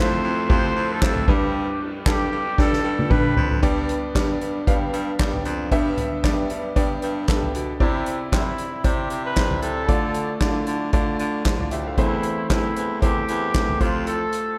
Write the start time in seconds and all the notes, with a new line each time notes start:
Already playing: F2 A3 C4 E4 F4 C5
0.00 C5
0.24 F2, ride
0.49 F2 A3 C4 E4 F4 G4 C5, kick, ride
0.75 F2, ride
0.93 A4
1.01 F2 A3 C4 E4 F4 C5, kick, snare, clap, ride
1.16 floor tom
1.28 G2 D4 G4 B4, kick, crash
1.54 ride
1.80 ride
2.06 G2 D4 G4 A4, kick, snare, clap
2.32 G2, ride
2.58 G2 D4 G4 A4 D5, kick, snare
2.73 snare
2.84 G2
2.99 high tom
3.10 G2 D4 G4 B4, kick, mid tom
3.36 F2, floor tom
3.51 floor tom
3.62 G2 B3 D4 G4 D5, kick, closed hi-hat
3.89 closed hi-hat
4.15 G2 B3 D4 G4 D5, kick, snare, clap, closed hi-hat
4.41 G2, closed hi-hat
4.67 G2 B3 D4 G4 F5, kick, closed hi-hat
4.92 G2, closed hi-hat
5.19 G2 B3 D4 G4 D5, kick, snare, clap, closed hi-hat
5.34 floor tom
5.45 F2, closed hi-hat
5.72 G2 B3 D4 G4 E5, kick, closed hi-hat
5.97 closed hi-hat, floor tom
6.24 G2 B3 D4 G4 D5, kick, snare, clap, closed hi-hat
6.50 G2, closed hi-hat
6.76 G2 B3 D4 G4 D5, kick, closed hi-hat
7.02 G2, closed hi-hat
7.28 G2 B3 D4 G4 A4, kick, snare, clap, closed hi-hat
7.43 floor tom
7.54 B2, closed hi-hat
7.80 C3 C4 E4 G4 D5, kick, crash
8.06 closed hi-hat
8.32 C3 C4 E4 G4 D5, kick, snare, clap, closed hi-hat
8.39 E5
8.58 closed hi-hat
8.84 C3 C4 E4 G4 D5, kick, closed hi-hat
9.10 C3, closed hi-hat
9.25 B4
9.36 C3 C4 E4 G4 D5, kick, snare, clap, closed hi-hat
9.50 floor tom
9.62 C3 A4, closed hi-hat
9.88 D3 A3 D4 F4 D5, kick, closed hi-hat
10.14 closed hi-hat
10.41 D3 A3 D4 E4 D5, kick, snare, clap, closed hi-hat
10.48 F4
10.67 D3, closed hi-hat
10.93 D3 A3 D4 F4 D5, kick, closed hi-hat
11.19 D3, closed hi-hat
11.45 D3 E4 C5, kick, snare, clap, closed hi-hat
11.60 F4 D5, floor tom
11.71 D2 G4 E5, closed hi-hat
11.87 A4 F5
11.97 E2 E3 A3 C4 E4 C5, kick, closed hi-hat
12.23 closed hi-hat
12.50 E2 A3 C4 E4 C5, kick, snare, clap, closed hi-hat
12.76 E2, closed hi-hat
13.02 E2 A3 C4 E4 G4 C5, kick, closed hi-hat
13.28 E2, closed hi-hat
13.54 E2 A3 C4 E4 C5, kick, snare, clap, closed hi-hat
13.69 floor tom
13.80 F2 A3 F4 G4 C5, kick, closed hi-hat
14.07 A4, closed hi-hat
14.32 closed hi-hat